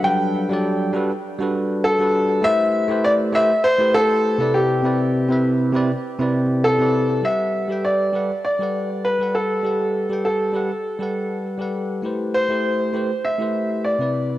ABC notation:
X:1
M:4/4
L:1/16
Q:"Swing 16ths" 1/4=100
K:G
V:1 name="Grand piano"
g6 z6 A4 | e4 d2 e2 c2 A4 G2- | G12 A4 | e4 d4 d4 B2 A2- |
A4 A8 z4 | z2 c6 e4 d4 |]
V:2 name="Tine electric piano"
[F,G,DAB]3 [F,G,DAd]3 [G,DFAB] z2 [G,DFAB]4 [G,DFAB]3 | [A,EGBc]3 [A,EGBc]3 [A,EGBc] z2 [A,EGBc]4 [C,CEBd]3 | [C,CEBd]3 [C,CEBe]3 [C,CEBd] z2 [C,CEBd]4 [C,CEBd]3 | [G,GABf]3 [G,GABg]3 [G,GABf] z2 [G,GABf]4 [G,GABf]3 |
[G,GABf]3 [G,GABg]3 [G,GABf] z2 [G,GABf]4 [G,GABf]3 | [A,EGBc]3 [A,EGAc]3 [A,EGBc] z2 [A,EGBc]4 [C,CEBd]3 |]